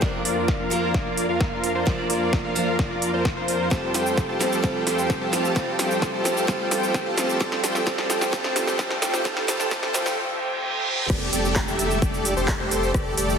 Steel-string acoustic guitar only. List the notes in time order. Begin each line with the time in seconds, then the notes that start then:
0.01 F3 A#3 D4 A#4
0.70 F3 A#3 D4 A#4
1.86 F3 A#3 D4 D5
2.55 F3 A#3 D4 A#4
3.70 G3 C4 F4 A4
4.39 G3 C4 F4 A4
4.62 G3 C4 F4 A4
5.32 G3 C4 F4 A4
5.55 G3 C4 F4 A4
6.24 G3 C4 F4 A4
6.47 G3 C4 F4 A4
7.16 G3 C4 F4 A4
7.39 G3 C4 F4 A4
7.86 G3 C4 F4 A4
8.32 G3 C4 F4 A4
8.78 G3 C4 F4 A4
9.24 G3 C4 F4 A4
9.47 G3 C4 F4 A4
9.70 G3 C4 F4 A4
9.93 G3 C4 F4 A4